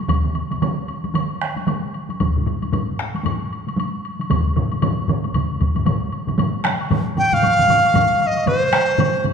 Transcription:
0.09 taiko medium
0.09 taiko mid medium
0.09 taiko high medium
0.09 high woodblock medium
0.25 taiko mid medium
0.35 taiko mid medium
0.35 high woodblock soft
0.51 taiko mid medium
0.51 taiko high medium
0.51 high woodblock soft
0.62 taiko mid loud
0.62 taiko high medium
0.62 high woodblock soft
0.88 high woodblock soft
1.04 taiko high medium
1.04 high woodblock soft
1.14 taiko mid medium
1.14 taiko high medium
1.14 high woodblock medium
1.41 taiko rim medium
1.41 high woodblock soft
1.56 taiko high soft
1.56 high woodblock soft
1.67 taiko mid medium
1.67 taiko high medium
1.67 high woodblock soft
1.94 high woodblock soft
2.09 taiko high soft
2.09 high woodblock soft
2.20 taiko medium
2.20 taiko low-mid medium
2.20 taiko high medium
2.20 high woodblock soft
2.36 taiko low-mid medium
2.46 taiko low-mid loud
2.46 high woodblock soft
2.62 taiko high medium
2.62 high woodblock soft
2.72 taiko low-mid medium
2.72 taiko high medium
2.72 high woodblock soft
3.00 taiko rim medium
3.14 taiko high soft
3.14 high woodblock soft
3.25 taiko low-mid medium
3.25 taiko high medium
3.25 high woodblock medium
3.53 high woodblock soft
3.67 taiko high soft
3.67 high woodblock soft
3.77 taiko high medium
3.77 high woodblock soft
4.05 high woodblock soft
4.19 taiko high soft
4.19 high woodblock soft
4.30 taiko medium
4.30 taiko low-mid medium
4.30 taiko mid medium
4.30 taiko high medium
4.30 high woodblock medium
4.56 taiko low-mid loud
4.56 taiko mid medium
4.56 high woodblock soft
4.72 taiko high medium
4.72 high woodblock soft
4.82 taiko low-mid loud
4.82 taiko mid loud
4.82 taiko high medium
4.82 high woodblock medium
5.08 taiko low-mid medium
5.08 taiko mid loud
5.08 high woodblock soft
5.24 taiko high soft
5.24 high woodblock soft
5.34 taiko medium
5.34 taiko low-mid medium
5.34 taiko mid medium
5.34 taiko high medium
5.34 high woodblock medium
5.61 taiko medium
5.61 taiko low-mid medium
5.61 taiko mid medium
5.61 taiko high soft
5.61 high woodblock soft
5.76 taiko low-mid medium
5.76 taiko mid medium
5.76 taiko high soft
5.76 high woodblock soft
5.86 taiko low-mid medium
5.86 taiko mid loud
5.86 taiko high medium
5.86 high woodblock medium
6.12 high woodblock soft
6.28 taiko low-mid medium
6.28 taiko mid medium
6.28 taiko high soft
6.28 high woodblock soft
6.38 taiko low-mid medium
6.38 taiko mid medium
6.38 taiko high medium
6.38 high woodblock medium
6.54 taiko high soft
6.65 taiko rim medium
6.65 taiko high medium
6.80 taiko high soft
6.80 high woodblock soft
6.90 taiko low-mid loud
6.90 taiko mid loud
6.90 taiko high medium
6.90 high woodblock soft
7.06 taiko high soft
7.17 7.35 G5 medium
7.17 taiko low-mid medium
7.17 taiko mid medium
7.17 taiko high medium
7.17 high woodblock soft
7.32 8.22 F5 medium
7.32 taiko low-mid medium
7.32 taiko mid medium
7.32 taiko high soft
7.32 high woodblock soft
7.42 taiko low-mid medium
7.42 taiko mid medium
7.42 taiko high medium
7.42 high woodblock medium
7.58 taiko low-mid medium
7.58 taiko mid medium
7.58 taiko high soft
7.68 taiko low-mid loud
7.68 taiko mid medium
7.68 taiko high soft
7.68 high woodblock soft
7.83 taiko high soft
7.83 high woodblock soft
7.94 taiko low-mid loud
7.94 taiko mid medium
7.94 taiko high medium
7.94 high woodblock medium
8.10 taiko high soft
8.20 8.28 F5 medium
8.20 taiko high soft
8.20 high woodblock soft
8.27 8.49 D#5 medium
8.36 taiko high soft
8.36 high woodblock soft
8.46 9.25 C5 medium
8.46 taiko low-mid medium
8.46 taiko mid medium
8.46 taiko high medium
8.46 high woodblock medium
8.62 taiko high soft
8.72 taiko rim medium
8.72 taiko high soft
8.72 high woodblock soft
8.88 taiko high soft
8.88 high woodblock soft
8.98 taiko low-mid medium
8.98 taiko mid loud
8.98 taiko high medium
8.98 high woodblock medium
9.14 taiko high soft
9.24 taiko low-mid medium
9.24 taiko mid medium
9.24 taiko high soft
9.24 high woodblock soft

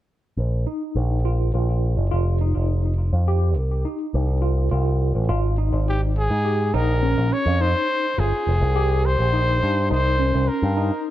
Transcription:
0.37 0.65 A#1 medium
0.67 1.19 D#4 medium
0.95 1.50 A#1 medium
1.25 1.51 F4 medium
1.54 1.95 A#1 medium
1.54 2.06 F4 soft
1.97 2.11 F#1 medium
2.11 2.53 F1 medium
2.11 2.37 F4 medium
2.41 2.93 D#4 medium
2.55 3.10 F1 medium
3.13 3.56 F2 medium
3.28 3.54 G4 medium
3.56 3.84 C2 medium
3.85 4.37 D#4 medium
4.14 4.69 C2 medium
4.42 4.68 F4 medium
4.71 5.12 C2 medium
4.71 5.23 F4 medium
5.15 5.28 A1 medium
5.29 5.70 G#1 medium
5.29 5.55 F4 medium
5.58 6.10 D#4 medium
5.72 6.27 G#1 medium
5.89 6.01 G4 medium
6.18 6.77 G#4 medium
6.30 6.71 G#2 medium
6.45 6.71 G4 medium
6.74 7.15 A#1 medium
6.74 7.00 D#4 medium
6.74 7.34 A#4 medium
7.03 7.54 C#4 medium
7.18 7.31 A#1 medium
7.33 7.63 C#5 medium
7.46 7.73 F2 medium
7.61 8.12 D#4 medium
7.61 8.21 C5 medium
8.18 8.32 G1 medium
8.18 8.70 F4 medium
8.18 9.07 G#4 medium
8.47 8.60 F1 medium
8.61 9.16 C2 medium
8.76 9.27 G4 medium
9.06 9.90 C5 medium
9.19 9.60 A#1 medium
9.33 9.85 D#4 medium
9.63 9.90 G2 medium
9.90 10.32 C2 medium
9.90 10.16 D#4 medium
9.90 10.50 C5 medium
10.19 10.71 C#4 medium
10.34 10.48 C2 medium
10.48 11.08 A#4 medium
10.63 10.90 G2 medium
10.77 11.10 D#4 medium

